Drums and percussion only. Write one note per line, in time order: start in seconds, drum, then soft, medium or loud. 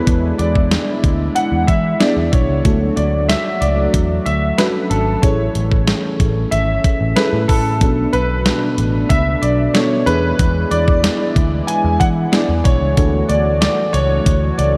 0.07 kick loud
0.07 closed hi-hat medium
0.39 closed hi-hat medium
0.55 kick medium
0.71 snare loud
0.71 closed hi-hat medium
1.04 kick medium
1.04 closed hi-hat medium
1.36 closed hi-hat medium
1.68 kick medium
1.68 closed hi-hat medium
2.01 snare loud
2.01 closed hi-hat medium
2.33 kick medium
2.33 closed hi-hat medium
2.65 kick loud
2.65 closed hi-hat medium
2.97 closed hi-hat medium
3.29 snare loud
3.29 closed hi-hat medium
3.62 closed hi-hat medium
3.94 kick medium
3.94 closed hi-hat medium
4.26 closed hi-hat medium
4.58 snare loud
4.58 closed hi-hat medium
4.91 closed hi-hat medium
5.23 kick loud
5.23 closed hi-hat medium
5.55 closed hi-hat medium
5.72 kick medium
5.87 snare loud
5.87 closed hi-hat medium
6.20 kick medium
6.20 closed hi-hat medium
6.52 closed hi-hat medium
6.84 kick medium
6.84 closed hi-hat medium
7.17 snare loud
7.17 closed hi-hat medium
7.49 kick medium
7.49 open hi-hat medium
7.81 kick loud
7.81 closed hi-hat medium
8.13 closed hi-hat medium
8.46 snare loud
8.46 closed hi-hat medium
8.78 closed hi-hat medium
9.10 kick medium
9.10 closed hi-hat medium
9.43 closed hi-hat medium
9.75 snare loud
9.75 closed hi-hat medium
10.07 closed hi-hat medium
10.39 kick loud
10.39 closed hi-hat medium
10.71 closed hi-hat medium
10.88 kick medium
11.04 snare loud
11.04 closed hi-hat medium
11.36 kick medium
11.36 closed hi-hat medium
11.68 closed hi-hat medium
12.01 kick medium
12.01 closed hi-hat medium
12.33 snare loud
12.33 closed hi-hat medium
12.65 kick medium
12.65 closed hi-hat medium
12.97 kick loud
12.97 closed hi-hat medium
13.29 closed hi-hat medium
13.62 snare loud
13.62 closed hi-hat medium
13.94 closed hi-hat medium
14.26 kick medium
14.26 closed hi-hat medium
14.59 closed hi-hat medium